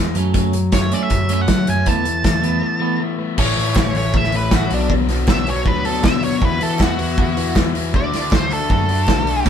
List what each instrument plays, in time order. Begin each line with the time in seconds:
Already playing: picked electric bass E2, overdriven electric guitar E3 G#3, distorted electric guitar E3 G#3 B3
0.15 picked electric bass F#2, overdriven electric guitar F#3 A3 C#4, distorted electric guitar F#3, closed hi-hat
0.33 overdriven electric guitar F#3 A3 C#4, distorted electric guitar F#3, kick, closed hi-hat
0.53 overdriven electric guitar F#3 A3, closed hi-hat
0.72 picked electric bass F#2, overdriven electric guitar F#3 A3, distorted electric guitar A3, lead electric guitar C#5, kick, snare, closed hi-hat
0.91 overdriven electric guitar F#3 A3 C#4, distorted electric guitar C#4, lead electric guitar D5, closed hi-hat
1.03 lead electric guitar E5
1.10 picked electric bass F#2, distorted electric guitar F#3, overdriven electric guitar F#3 A3, kick, closed hi-hat
1.29 overdriven electric guitar F#3 A3 C#4, distorted electric guitar C#4, closed hi-hat
1.33 lead electric guitar E5
1.41 lead electric guitar F#5
1.48 overdriven electric guitar F#3 A3, picked electric bass F#3, distorted electric guitar A3, kick, snare, closed hi-hat
1.67 picked electric bass F#2, overdriven electric guitar F#3 A3, distorted electric guitar C#4, lead electric guitar G#5, closed hi-hat
1.86 picked electric bass E2, overdriven electric guitar E3 A3 B3, distorted electric guitar E3, lead electric guitar A5, kick, closed hi-hat
2.05 overdriven electric guitar E3 A3, closed hi-hat
2.23 picked electric bass E2, overdriven electric guitar E3 A3, distorted electric guitar A3, kick, snare, closed hi-hat
2.42 overdriven electric guitar E3 A3 B3, distorted electric guitar B3, closed hi-hat
2.61 overdriven electric guitar E3 A3, distorted electric guitar E3
2.80 overdriven electric guitar E3 A3 B3, distorted electric guitar B3
3.00 overdriven electric guitar E3 A3, distorted electric guitar A3
3.19 overdriven electric guitar E3 A3, distorted electric guitar B3
3.36 picked electric bass A1, distorted electric guitar A2 E3 A3 C#4 E4, string machine A4 C#5 B5, lead electric guitar C#5, kick, crash
3.57 distorted electric guitar A2 E3 A3 C#4 E4, picked electric bass A2, open hi-hat
3.76 picked electric bass A1, distorted electric guitar A2 E3 A3 C#4 E4, kick, snare, clap
3.95 distorted electric guitar A2 E3 A3 C#4 E4, lead electric guitar C#5, open hi-hat
4.14 picked electric bass A1, distorted electric guitar A2 E3 A3 C#4 E4, lead electric guitar E5, kick
4.24 snare
4.32 distorted electric guitar A2 E3 A3 C#4 E4, lead electric guitar B4, open hi-hat
4.51 picked electric bass A1, distorted electric guitar A2 E3 A3 C#4 E4, lead electric guitar F#4, kick, snare, clap
4.70 picked electric bass B1, distorted electric guitar B2 F#3 B3 D4 F#4, string machine B4 D5 C#6, open hi-hat
4.74 lead electric guitar D4
4.89 distorted electric guitar B2 F#3 B3 D4 F#4, kick
5.08 distorted electric guitar B2 F#3 B3 D4 F#4, snare, open hi-hat
5.27 picked electric bass B1, distorted electric guitar B2 F#3 B3 D4 F#4, lead electric guitar E5, kick, snare, clap
5.46 distorted electric guitar B2 F#3 B3 D4 F#4, lead electric guitar C#5, open hi-hat
5.66 picked electric bass D2, distorted electric guitar B2 F#3 B3 D4 F#4, lead electric guitar B4, kick
5.84 distorted electric guitar B2 F#3 B3 D4 F#4, lead electric guitar A4, open hi-hat
6.02 distorted electric guitar B2 F#3 B3 D4 F#4, picked electric bass B2, lead electric guitar E5, kick, snare, clap
6.22 distorted electric guitar B2 F#3 B3 D4 F#4, lead electric guitar C#5, open hi-hat
6.40 picked electric bass E2, distorted electric guitar E3 B3 E4 F#4, string machine F#5 E6, kick
6.45 lead electric guitar B4
6.60 distorted electric guitar E3 B3 E4 F#4, picked electric bass E3, lead electric guitar A4, open hi-hat
6.79 picked electric bass E2, distorted electric guitar E3 B3 E4 F#4, lead electric guitar F#4, kick, snare, clap
6.98 distorted electric guitar E3 B3 E4 F#4, open hi-hat
7.18 picked electric bass E2, distorted electric guitar E3 B3 E4 F#4, kick
7.37 distorted electric guitar E3 B3 E4 F#4, open hi-hat
7.56 picked electric bass E2, distorted electric guitar E3 B3 E4 F#4, kick, snare, clap
7.74 distorted electric guitar E3 B3 E4 F#4, open hi-hat
7.93 picked electric bass D2, distorted electric guitar D3 A3 D4 F#4, string machine D5 F#5 D6, lead electric guitar D5, kick
8.12 distorted electric guitar D3 A3 D4 F#4, snare, open hi-hat
8.31 picked electric bass D2, distorted electric guitar D3 A3 D4 F#4, lead electric guitar C5, kick, snare, clap
8.50 distorted electric guitar D3 A3 D4 F#4, lead electric guitar A4, clap, open hi-hat
8.70 picked electric bass F#2, distorted electric guitar D3 A3 D4 F#4, lead electric guitar A4, kick
8.89 distorted electric guitar D3 A3 D4 F#4, open hi-hat
9.07 picked electric bass B1, distorted electric guitar D3 A3 D4 F#4, kick, snare, clap
9.27 distorted electric guitar D3 A3 D4 F#4, open hi-hat
9.45 picked electric bass A1, overdriven electric guitar A2 E3 A3, distorted electric guitar A2 E3, kick, crash